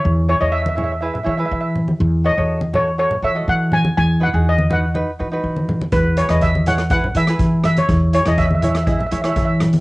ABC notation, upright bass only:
X:1
M:4/4
L:1/16
Q:1/4=122
K:E
V:1 name="Upright bass" clef=bass
E,,3 E,,6- E,, E,2 E,4 | E,,3 E,,6- E,, E,2 E,4 | E,,3 E,,6- E,, E,2 E,4 | E,,3 E,,6- E,, E,2 E,4 |
E,,3 E,,6- E,, E,2 E,4 |]